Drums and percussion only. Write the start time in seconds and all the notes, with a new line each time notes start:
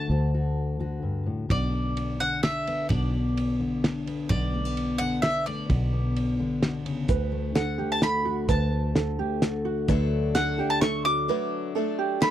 1.50 kick, ride
1.97 ride
2.44 snare, ride
2.67 ride
2.90 kick, ride
3.37 ride
3.84 snare, ride
4.07 ride
4.30 kick, ride
4.77 ride
5.23 snare, ride
5.47 ride
5.70 kick, ride
6.16 ride
6.63 snare, ride
6.86 ride
7.08 kick, closed hi-hat
7.56 snare, closed hi-hat
8.02 snare, closed hi-hat
8.49 kick, closed hi-hat
8.96 snare, closed hi-hat
9.42 snare, closed hi-hat
9.88 kick, closed hi-hat
10.35 snare, closed hi-hat
10.82 snare, closed hi-hat
12.22 snare